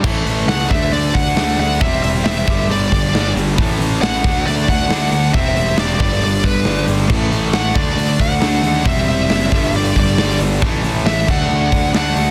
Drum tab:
CC |x---------------|----------------|----------------|----------------|
HH |--o-o---o-o-o-o-|o-o-o-o-o-o-o-o-|o-o-o-o-o-o-o-o-|o-o-o-o-o-o-o-o-|
SD |----o-------o---|----o--o---oo---|----o--o---oo---|----o--o---oo---|
BD |o-----o---o-----|o-----o---o-----|o-----o---o-----|o-----o---o-----|

CC |x---------------|----------------|------x---------|
HH |--o-o-o-o-o-o-o-|--o-o-o-o-o-o-o-|--o-o-----o-o-o-|
SD |----o-------o---|----o------oo---|----o--o----o---|
BD |o-----o---o-----|o-----o---o-----|o-----o---o-----|